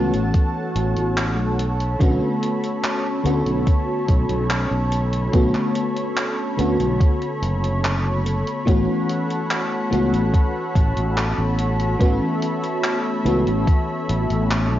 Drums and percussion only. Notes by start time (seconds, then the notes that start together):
0.14 closed hi-hat
0.34 kick, closed hi-hat
0.76 closed hi-hat
0.97 closed hi-hat
1.17 clap, closed hi-hat
1.59 closed hi-hat
1.80 closed hi-hat
2.00 kick, closed hi-hat
2.43 closed hi-hat
2.63 closed hi-hat
2.84 clap, closed hi-hat
3.26 closed hi-hat
3.46 closed hi-hat
3.67 kick, closed hi-hat
4.09 kick, closed hi-hat
4.30 closed hi-hat
4.50 clap, closed hi-hat
4.92 closed hi-hat
5.13 closed hi-hat
5.34 kick, closed hi-hat
5.55 clap
5.75 closed hi-hat
5.97 closed hi-hat
6.17 clap, closed hi-hat
6.59 closed hi-hat
6.80 closed hi-hat
7.01 kick, closed hi-hat
7.22 closed hi-hat
7.43 closed hi-hat
7.64 closed hi-hat
7.84 clap, closed hi-hat
8.26 closed hi-hat
8.47 closed hi-hat
8.67 kick, closed hi-hat
9.09 closed hi-hat
9.30 closed hi-hat
9.51 clap, closed hi-hat
9.93 closed hi-hat
10.14 closed hi-hat
10.34 kick, closed hi-hat
10.75 kick, closed hi-hat
10.97 closed hi-hat
11.18 clap, closed hi-hat
11.59 closed hi-hat
11.80 closed hi-hat
12.00 kick, closed hi-hat
12.42 closed hi-hat
12.64 closed hi-hat
12.84 clap, closed hi-hat
13.26 closed hi-hat
13.47 closed hi-hat
13.67 kick, closed hi-hat
14.09 closed hi-hat
14.30 closed hi-hat
14.51 clap, closed hi-hat